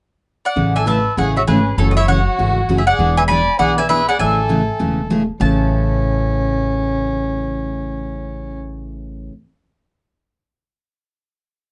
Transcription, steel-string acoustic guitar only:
0.56 0.76 C#3 medium
0.56 0.77 E3 medium
0.56 0.77 A3 medium
0.56 0.77 C#4 medium
0.56 0.77 G#4 medium
0.86 0.98 C#3 medium
0.86 0.98 E3 medium
0.86 0.98 A3 medium
0.86 0.98 C#4 medium
0.86 0.98 G#4 medium
1.17 1.38 C#3 medium
1.17 1.38 E3 medium
1.17 1.38 A3 medium
1.17 1.38 C#4 medium
1.17 1.38 G#4 medium
1.47 1.59 C#3 medium
1.47 1.59 E3 medium
1.47 1.59 A3 medium
1.47 1.59 C#4 medium
1.47 1.59 G#4 medium
1.78 1.98 C#3 soft
1.78 1.98 E3 medium
1.78 1.98 A3 medium
1.78 1.99 C#4 medium
1.78 1.98 F#4 medium
2.08 2.19 C#3 medium
2.08 2.19 E3 medium
2.08 2.20 A3 medium
2.08 2.19 C#4 medium
2.08 2.20 F#4 medium
2.39 2.59 C#3 medium
2.39 2.59 E3 medium
2.39 2.59 A3 medium
2.39 2.59 C#4 medium
2.39 2.59 F#4 medium
2.69 2.80 C#3 medium
2.69 2.80 E3 medium
2.69 2.80 A3 medium
2.69 2.80 C#4 medium
2.69 2.80 F#4 medium
2.99 3.19 E3 medium
2.99 3.19 B3 medium
2.99 3.19 D4 medium
2.99 3.20 G#4 medium
3.29 3.40 E3 medium
3.29 3.41 B3 medium
3.29 3.41 D4 medium
3.29 3.41 G#4 medium
3.60 3.80 E3 medium
3.60 3.80 B3 medium
3.60 3.80 D4 medium
3.60 3.80 G#4 medium
3.89 4.01 E3 medium
3.89 4.01 B3 medium
3.89 4.01 D4 medium
3.89 4.01 G#4 medium
4.19 4.39 C#3 soft
4.19 4.40 E3 medium
4.19 4.40 A3 medium
4.19 4.40 C#4 medium
4.19 4.40 G#4 medium
4.49 4.61 C#3 medium
4.49 4.61 E3 medium
4.49 4.61 A3 medium
4.49 4.61 C#4 medium
4.49 4.61 G#4 medium
4.79 5.00 C#3 medium
4.79 5.00 E3 medium
4.79 5.00 A3 medium
4.79 5.00 C#4 medium
4.79 5.00 G#4 medium
5.10 5.21 C#3 medium
5.10 5.22 E3 medium
5.10 5.22 A3 medium
5.10 5.22 C#4 medium
5.10 5.22 G#4 medium
5.40 9.32 A2 medium
5.40 9.32 C#3 medium
5.40 9.32 E3 medium
5.40 9.32 A3 medium
5.40 9.33 C#4 medium

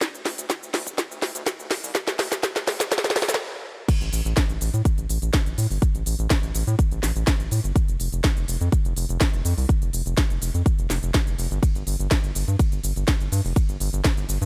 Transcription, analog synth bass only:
0.14 0.22 D2 medium
0.26 0.35 D2 loud
0.38 0.46 D2 medium
0.62 0.71 D2 medium
0.74 0.83 D2 loud
0.87 0.95 D1 medium
1.11 1.19 D2 medium
1.22 1.31 D2 loud
1.35 1.43 D2 medium
1.59 1.67 D2 medium
1.71 1.80 D1 loud
1.83 1.92 C2 medium
2.08 2.16 D2 medium
2.19 2.28 D2 loud
2.32 2.40 D2 medium
2.56 2.64 D2 medium
2.67 2.76 D2 loud
2.80 2.88 D1 medium
3.04 3.12 D2 medium
3.16 3.25 D2 loud
3.29 3.37 D2 loud
4.01 4.09 A1 medium
4.13 4.22 A1 medium
4.25 4.33 A1 medium
4.50 4.58 A1 medium
4.61 4.70 A1 loud
4.74 4.82 A2 medium
4.98 5.06 A1 medium
5.09 5.18 A1 loud
5.22 5.30 A1 loud
5.46 5.54 A1 medium
5.58 5.67 A2 loud
5.71 5.79 G1 medium
5.95 6.03 A1 medium
6.06 6.15 A1 medium
6.19 6.27 A1 loud
6.43 6.51 A1 medium
6.55 6.64 A1 loud
6.67 6.75 A2 medium
6.92 7.00 A1 medium
7.03 7.12 A1 loud
7.16 7.24 A1 loud
7.40 7.48 A1 medium
7.51 7.60 A2 loud
7.64 7.72 G1 medium
7.88 7.96 F1 medium
8.00 8.09 F1 medium
8.13 8.21 F1 loud
8.37 8.45 F1 medium
8.48 8.57 F1 loud
8.61 8.69 F2 medium
8.85 8.93 F1 medium
8.97 9.06 F1 loud
9.09 9.17 F1 loud
9.33 9.42 F1 medium
9.45 9.54 F2 loud
9.58 9.66 C2 medium
9.82 9.90 F1 medium
9.93 10.02 F1 medium
10.06 10.14 F1 loud
10.30 10.38 F1 medium
10.42 10.51 F1 loud
10.54 10.63 F2 medium
10.79 10.87 F1 medium
10.90 10.99 F1 loud
11.03 11.11 F1 loud
11.27 11.35 F1 medium
11.38 11.47 F1 loud
11.51 11.59 G1 medium
11.75 11.83 G1 medium
11.87 11.96 G1 medium
11.99 12.08 G1 loud
12.24 12.32 G1 medium
12.35 12.44 G1 loud
12.48 12.56 G2 medium
12.72 12.80 G1 medium
12.84 12.93 G1 loud
12.96 13.04 G1 loud
13.21 13.29 G1 medium
13.32 13.41 G2 loud
13.45 13.53 F1 loud
13.69 13.77 G1 medium
13.80 13.89 G1 medium
13.93 14.01 G1 medium
14.17 14.25 G1 medium
14.29 14.38 G1 loud
14.41 14.46 G2 medium

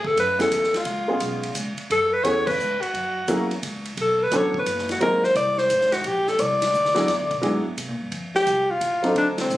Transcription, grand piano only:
0.38 0.49 A3 medium
0.38 0.50 B3 medium
0.38 0.50 C#4 medium
0.38 0.50 E4 medium
0.38 0.50 G#4 medium
1.08 1.52 G#3 medium
1.08 1.53 B3 medium
1.08 1.53 C#4 medium
1.08 1.53 F4 medium
1.08 1.53 G#4 medium
2.23 2.44 A3 medium
2.23 2.44 B3 medium
2.23 2.44 C#4 medium
2.23 2.45 E4 medium
2.23 2.45 G#4 medium
3.28 3.48 F#3 medium
3.28 3.49 A#3 medium
3.28 3.49 C#4 medium
3.28 3.49 E4 medium
3.28 3.49 G#4 medium
4.32 4.52 F#3 medium
4.32 4.52 B3 medium
4.32 4.52 C#4 medium
4.32 4.53 D4 medium
4.32 4.53 A4 medium
5.01 5.21 F#3 medium
5.01 5.21 A#3 medium
5.01 5.21 C4 medium
5.01 5.22 D#4 medium
5.01 5.22 G#4 medium
6.95 7.06 F#3 medium
6.95 7.06 B3 medium
6.95 7.07 D4 medium
6.95 7.07 E4 medium
6.95 7.07 G#4 medium
7.42 7.62 F#3 medium
7.42 7.63 B3 medium
7.42 7.63 D4 medium
7.42 7.63 E4 medium
7.42 7.63 G#4 medium
9.03 9.47 F#3 medium
9.03 9.48 C4 medium
9.03 9.48 D4 medium
9.03 9.48 D#4 medium
9.03 9.48 A4 medium

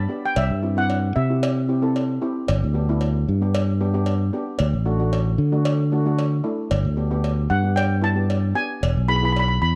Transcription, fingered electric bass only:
0.37 0.49 C2 medium
0.50 1.12 G2 medium
1.16 2.18 C3 medium
2.49 2.61 G1 medium
2.63 3.24 D2 medium
3.28 4.30 G2 medium
4.60 4.73 D2 medium
4.73 5.35 A1 medium
5.38 6.40 D3 medium
6.71 6.84 G1 medium
6.85 7.46 D2 medium
7.50 8.52 G2 medium
8.83 8.95 E1 medium
8.97 9.58 B1 medium
9.62 9.75 E2 medium

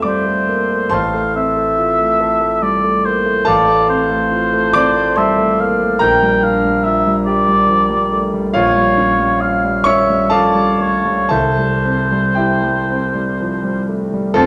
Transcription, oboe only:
0.06 0.95 C5 medium
0.94 1.35 F5 medium
1.36 2.64 E5 medium
2.63 3.07 D5 medium
3.05 3.47 C5 medium
3.48 3.89 D5 medium
3.89 5.19 C5 medium
5.18 5.62 E5 medium
5.60 6.00 F5 medium
6.01 6.45 G5 medium
6.43 6.85 F5 medium
6.84 7.14 E5 medium
7.26 8.25 D5 medium
8.55 9.43 C#5 medium
9.41 9.87 F5 medium
9.85 10.34 E5 medium
10.33 10.83 D5 medium
10.81 11.31 C#5 medium
11.31 13.84 C5 medium
14.36 14.46 A5 medium

